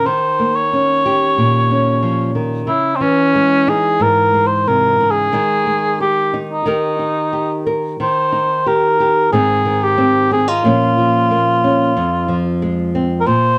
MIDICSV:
0, 0, Header, 1, 3, 480
1, 0, Start_track
1, 0, Tempo, 660066
1, 41, Time_signature, 4, 2, 24, 8
1, 9879, End_track
2, 0, Start_track
2, 0, Title_t, "Cor anglais"
2, 0, Program_c, 0, 69
2, 43, Note_on_c, 0, 72, 76
2, 406, Note_on_c, 0, 73, 85
2, 417, Note_off_c, 0, 72, 0
2, 1716, Note_off_c, 0, 73, 0
2, 1947, Note_on_c, 0, 64, 64
2, 2151, Note_on_c, 0, 60, 50
2, 2162, Note_off_c, 0, 64, 0
2, 2193, Note_on_c, 0, 61, 74
2, 2204, Note_off_c, 0, 60, 0
2, 2684, Note_on_c, 0, 68, 72
2, 2694, Note_off_c, 0, 61, 0
2, 2926, Note_on_c, 0, 70, 83
2, 2937, Note_off_c, 0, 68, 0
2, 3248, Note_on_c, 0, 72, 73
2, 3259, Note_off_c, 0, 70, 0
2, 3404, Note_on_c, 0, 70, 78
2, 3414, Note_off_c, 0, 72, 0
2, 3717, Note_on_c, 0, 68, 81
2, 3728, Note_off_c, 0, 70, 0
2, 4358, Note_off_c, 0, 68, 0
2, 4370, Note_on_c, 0, 67, 67
2, 4663, Note_off_c, 0, 67, 0
2, 4731, Note_on_c, 0, 63, 58
2, 5546, Note_off_c, 0, 63, 0
2, 5832, Note_on_c, 0, 72, 74
2, 6307, Note_on_c, 0, 70, 74
2, 6318, Note_off_c, 0, 72, 0
2, 6776, Note_off_c, 0, 70, 0
2, 6781, Note_on_c, 0, 68, 82
2, 7152, Note_on_c, 0, 67, 70
2, 7163, Note_off_c, 0, 68, 0
2, 7503, Note_off_c, 0, 67, 0
2, 7507, Note_on_c, 0, 68, 74
2, 7625, Note_on_c, 0, 65, 74
2, 7635, Note_off_c, 0, 68, 0
2, 9052, Note_off_c, 0, 65, 0
2, 9603, Note_on_c, 0, 70, 65
2, 9647, Note_on_c, 0, 72, 93
2, 9658, Note_off_c, 0, 70, 0
2, 9879, Note_off_c, 0, 72, 0
2, 9879, End_track
3, 0, Start_track
3, 0, Title_t, "Nylon-string guitar"
3, 0, Program_c, 1, 24
3, 0, Note_on_c, 1, 63, 52
3, 43, Note_on_c, 1, 51, 56
3, 287, Note_on_c, 1, 58, 43
3, 529, Note_off_c, 1, 63, 0
3, 532, Note_on_c, 1, 61, 51
3, 768, Note_on_c, 1, 67, 53
3, 1000, Note_on_c, 1, 46, 52
3, 1233, Note_off_c, 1, 61, 0
3, 1242, Note_on_c, 1, 61, 41
3, 1470, Note_off_c, 1, 51, 0
3, 1473, Note_on_c, 1, 53, 45
3, 1706, Note_off_c, 1, 53, 0
3, 1709, Note_on_c, 1, 51, 44
3, 1927, Note_off_c, 1, 58, 0
3, 1927, Note_off_c, 1, 61, 0
3, 1929, Note_off_c, 1, 67, 0
3, 1938, Note_off_c, 1, 46, 0
3, 1941, Note_on_c, 1, 49, 57
3, 1950, Note_off_c, 1, 51, 0
3, 2185, Note_on_c, 1, 52, 46
3, 2186, Note_off_c, 1, 49, 0
3, 2437, Note_on_c, 1, 56, 51
3, 2672, Note_on_c, 1, 63, 45
3, 2908, Note_on_c, 1, 44, 56
3, 3149, Note_off_c, 1, 56, 0
3, 3157, Note_on_c, 1, 56, 41
3, 3399, Note_on_c, 1, 48, 51
3, 3637, Note_off_c, 1, 48, 0
3, 3639, Note_on_c, 1, 49, 46
3, 3842, Note_off_c, 1, 52, 0
3, 3844, Note_off_c, 1, 44, 0
3, 3866, Note_off_c, 1, 56, 0
3, 3871, Note_on_c, 1, 51, 60
3, 3876, Note_on_c, 1, 56, 49
3, 3878, Note_off_c, 1, 49, 0
3, 3880, Note_off_c, 1, 63, 0
3, 3883, Note_on_c, 1, 63, 46
3, 4111, Note_off_c, 1, 56, 0
3, 4119, Note_on_c, 1, 56, 50
3, 4356, Note_off_c, 1, 63, 0
3, 4365, Note_on_c, 1, 63, 45
3, 4598, Note_off_c, 1, 63, 0
3, 4607, Note_on_c, 1, 63, 49
3, 4815, Note_off_c, 1, 63, 0
3, 4831, Note_off_c, 1, 51, 0
3, 4840, Note_on_c, 1, 51, 57
3, 4841, Note_off_c, 1, 56, 0
3, 4844, Note_on_c, 1, 63, 51
3, 4851, Note_on_c, 1, 67, 53
3, 4854, Note_on_c, 1, 70, 50
3, 5075, Note_off_c, 1, 63, 0
3, 5083, Note_on_c, 1, 63, 45
3, 5320, Note_off_c, 1, 67, 0
3, 5329, Note_on_c, 1, 67, 42
3, 5565, Note_off_c, 1, 70, 0
3, 5574, Note_on_c, 1, 70, 44
3, 5784, Note_off_c, 1, 63, 0
3, 5785, Note_off_c, 1, 67, 0
3, 5786, Note_off_c, 1, 70, 0
3, 5808, Note_off_c, 1, 51, 0
3, 5817, Note_on_c, 1, 51, 63
3, 6053, Note_on_c, 1, 63, 43
3, 6300, Note_on_c, 1, 67, 46
3, 6537, Note_off_c, 1, 67, 0
3, 6546, Note_on_c, 1, 67, 48
3, 6748, Note_off_c, 1, 63, 0
3, 6753, Note_off_c, 1, 67, 0
3, 6775, Note_off_c, 1, 51, 0
3, 6780, Note_on_c, 1, 44, 64
3, 6784, Note_on_c, 1, 51, 51
3, 6789, Note_on_c, 1, 60, 49
3, 6795, Note_on_c, 1, 63, 60
3, 7011, Note_off_c, 1, 51, 0
3, 7020, Note_on_c, 1, 51, 49
3, 7247, Note_off_c, 1, 60, 0
3, 7256, Note_on_c, 1, 60, 54
3, 7491, Note_off_c, 1, 60, 0
3, 7497, Note_off_c, 1, 63, 0
3, 7500, Note_on_c, 1, 60, 50
3, 7619, Note_off_c, 1, 60, 0
3, 7619, Note_on_c, 1, 63, 38
3, 7712, Note_off_c, 1, 44, 0
3, 7737, Note_on_c, 1, 46, 64
3, 7739, Note_off_c, 1, 51, 0
3, 7739, Note_off_c, 1, 63, 0
3, 7742, Note_on_c, 1, 53, 51
3, 7750, Note_on_c, 1, 58, 49
3, 7753, Note_on_c, 1, 61, 55
3, 7981, Note_off_c, 1, 53, 0
3, 7984, Note_on_c, 1, 53, 47
3, 8215, Note_off_c, 1, 58, 0
3, 8224, Note_on_c, 1, 58, 48
3, 8456, Note_off_c, 1, 61, 0
3, 8465, Note_on_c, 1, 61, 51
3, 8668, Note_off_c, 1, 58, 0
3, 8669, Note_off_c, 1, 61, 0
3, 8692, Note_off_c, 1, 46, 0
3, 8702, Note_on_c, 1, 41, 61
3, 8929, Note_off_c, 1, 53, 0
3, 8932, Note_on_c, 1, 53, 54
3, 9179, Note_on_c, 1, 56, 52
3, 9416, Note_on_c, 1, 60, 44
3, 9616, Note_off_c, 1, 53, 0
3, 9646, Note_on_c, 1, 46, 63
3, 9648, Note_off_c, 1, 41, 0
3, 9649, Note_off_c, 1, 56, 0
3, 9649, Note_off_c, 1, 60, 0
3, 9879, Note_off_c, 1, 46, 0
3, 9879, End_track
0, 0, End_of_file